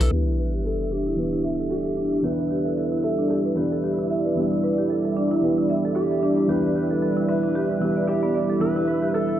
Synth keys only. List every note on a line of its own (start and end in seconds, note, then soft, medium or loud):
0.10 1.14 E3 medium
0.10 1.15 B3 medium
0.10 1.16 D4 medium
0.14 1.16 G4 medium
1.16 2.21 E3 medium
1.16 2.21 B3 medium
1.16 2.22 D4 medium
1.20 2.23 G4 medium
2.22 3.53 E3 medium
2.22 3.54 B3 medium
2.22 3.55 D4 medium
2.26 3.55 G4 medium
3.55 4.33 E3 medium
3.55 4.34 B3 medium
3.55 4.34 D4 medium
3.59 4.35 G4 medium
4.35 5.39 E3 medium
4.35 5.40 B3 medium
4.35 5.41 D4 medium
4.39 5.41 G4 medium
5.41 6.45 E3 medium
5.41 6.46 B3 medium
5.41 6.47 D4 medium
5.41 6.47 G4 medium
6.47 7.78 E3 medium
6.47 7.79 B3 medium
6.47 7.80 D4 medium
6.47 7.80 G4 medium
7.80 8.58 E3 medium
7.80 8.59 B3 medium
7.80 8.59 D4 medium
7.84 8.60 G4 medium
8.59 9.40 E3 medium
8.59 9.40 B3 medium
8.59 9.40 D4 medium
8.59 9.40 G4 medium